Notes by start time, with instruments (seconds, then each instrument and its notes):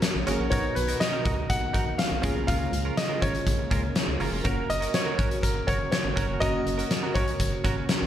Already playing: string machine C#3 F#3 F#4 A#4, fm electric piano A#3 C#4 F#4 A#4, grand piano C#5
0.02 muted clean electric guitar stroke, snare, closed hi-hat
0.15 fm bass A#1, muted clean electric guitar stroke
0.26 fm bass G#1, fm electric piano A#3 C#4 F#4 G#4, clean electric guitar C#4 F#4 A#4, closed hi-hat
0.39 fm bass A#1, clean electric guitar C#4 F#4 A#4
0.50 fm bass B1, fm electric piano B2 B3 D#4 F#4 A#4, string machine D#3 B3, clean electric guitar D#4 F#4 A#4, grand piano C#5, kick, closed hi-hat
0.75 fm bass B1, grand piano B4, muted clean electric guitar stroke, closed hi-hat
0.88 clean electric guitar D#4 F#4 A#4, closed hi-hat
1.00 grand piano D#5, snare, closed hi-hat
1.12 clean electric guitar D#4 F#4 A#4
1.25 fm bass C#2, clean electric guitar D#4 F#4 A#4, kick, closed hi-hat
1.37 muted clean electric guitar stroke
1.50 fm bass B1, grand piano F#5, muted clean electric guitar stroke, kick, closed hi-hat
1.61 muted clean electric guitar stroke
1.73 fm bass A#1, clean electric guitar D#4 F#4 A#4, kick, closed hi-hat
1.86 muted clean electric guitar stroke
1.98 grand piano F5, muted clean electric guitar stroke, snare, closed hi-hat
2.10 fm bass B1, muted clean electric guitar stroke
2.22 fm bass C#2, string machine C#3 G#3 F4, fm electric piano C#3 A#3 C#4 F4 G#4, clean electric guitar C#4 F4 A#4, kick, closed hi-hat
2.35 fm bass B1, clean electric guitar C#4 F4 A#4
2.47 fm bass C#2, clean electric guitar C#4 F4 A#4, grand piano F5, kick, closed hi-hat
2.72 fm bass C#2, muted clean electric guitar stroke, closed hi-hat
2.85 clean electric guitar C#4 F4 A#4
2.97 grand piano D#5, muted clean electric guitar stroke, snare, closed hi-hat
3.09 clean electric guitar C#4 F4 A#4
3.21 fm bass G#1, clean electric guitar C#4 F4 A#4, grand piano C#5, kick, closed hi-hat
3.34 muted clean electric guitar stroke, closed hi-hat
3.46 fm bass A#1, muted clean electric guitar stroke, kick, closed hi-hat
3.59 muted clean electric guitar stroke
3.71 fm bass C#2, clean electric guitar C#4 F4 A#4, kick, closed hi-hat
3.84 muted clean electric guitar stroke
3.95 muted clean electric guitar stroke, snare, closed hi-hat
4.08 fm bass C#2, muted clean electric guitar stroke
4.20 fm bass F#1, clean electric guitar C#4 F4 A#4, open hi-hat
4.32 fm bass F1, clean electric guitar C#4 F4 A#4
4.44 fm bass F#1, string machine F#3 F#4, fm electric piano A#3 C#4 F#4 A#4, clean electric guitar C#4 F#4 A#4, grand piano A#4, kick, closed hi-hat
4.69 fm bass F#1, grand piano D#5, muted clean electric guitar stroke, closed hi-hat
4.81 clean electric guitar C#4 F#4 A#4, closed hi-hat
4.94 grand piano C#5, muted clean electric guitar stroke, snare, closed hi-hat
5.06 clean electric guitar C#4 F#4 A#4
5.18 fm bass A#1, clean electric guitar C#4 F#4 A#4, kick, closed hi-hat
5.30 muted clean electric guitar stroke, closed hi-hat
5.42 fm bass G#1, grand piano A#4, muted clean electric guitar stroke, kick, closed hi-hat
5.55 muted clean electric guitar stroke
5.67 fm bass F#1, clean electric guitar C#4 F#4 A#4, grand piano C#5, kick, closed hi-hat
5.79 muted clean electric guitar stroke
5.92 grand piano C#5, muted clean electric guitar stroke, snare, closed hi-hat
6.03 fm bass G#1, muted clean electric guitar stroke
6.16 fm bass F#1, clean electric guitar C#4 F#4 A#4, kick, closed hi-hat
6.28 fm bass F1, clean electric guitar C#4 F#4 A#4
6.40 fm bass F#1, fm electric piano A#3 C#4 F#4 A#4, clean electric guitar C#4 F#4 A#4, grand piano D#5, kick, closed hi-hat
6.66 fm bass F#1, muted clean electric guitar stroke, closed hi-hat
6.78 clean electric guitar C#4 F#4 A#4, closed hi-hat
6.91 muted clean electric guitar stroke, snare, closed hi-hat
7.03 clean electric guitar C#4 F#4 A#4
7.14 fm bass A#1, clean electric guitar C#4 F#4 A#4, grand piano C#5, kick, closed hi-hat
7.27 muted clean electric guitar stroke, closed hi-hat
7.40 fm bass F#1, muted clean electric guitar stroke, kick, closed hi-hat
7.52 muted clean electric guitar stroke
7.64 fm bass G#1, clean electric guitar C#4 F#4 A#4, kick, closed hi-hat
7.77 muted clean electric guitar stroke
7.89 muted clean electric guitar stroke, snare, closed hi-hat
8.02 fm bass A#1, muted clean electric guitar stroke